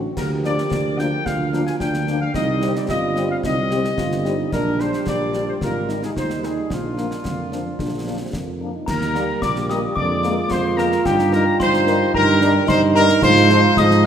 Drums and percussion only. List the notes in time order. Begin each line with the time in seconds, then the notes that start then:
0.17 concert bass drum, snare, crash
0.44 snare
0.58 snare
0.71 concert bass drum, snare
0.99 snare
1.26 concert bass drum, snare
1.53 snare
1.67 snare
1.80 concert bass drum, snare
1.94 snare
2.07 snare
2.34 concert bass drum, snare
2.62 snare
2.75 snare
2.89 concert bass drum, snare
3.16 snare
3.44 concert bass drum, snare
3.71 snare
3.84 snare
3.98 concert bass drum, snare
4.12 snare
4.25 snare
4.52 concert bass drum, snare, crash
4.80 snare
4.93 snare
5.07 concert bass drum, snare
5.33 snare
5.61 concert bass drum, snare
5.89 snare
6.03 snare
6.17 concert bass drum, snare
6.30 snare
6.43 snare
6.70 concert bass drum, snare
6.98 snare
7.11 snare
7.25 concert bass drum, snare
7.52 snare
7.79 concert bass drum, snare
8.33 concert bass drum, snare
8.88 concert bass drum, snare, crash
9.01 snare
9.15 snare
9.42 concert bass drum, snare
9.56 snare
9.69 snare
9.96 concert bass drum
10.23 snare
10.51 concert bass drum, snare
10.78 snare
10.92 snare
11.05 concert bass drum, snare, crash
11.19 snare
11.32 snare
11.60 concert bass drum, snare
11.73 snare
11.87 snare
12.14 concert bass drum
12.41 snare
12.69 concert bass drum, snare
12.96 snare
13.09 snare
13.22 concert bass drum, snare, crash
13.36 snare
13.49 snare
13.77 concert bass drum, snare
13.91 snare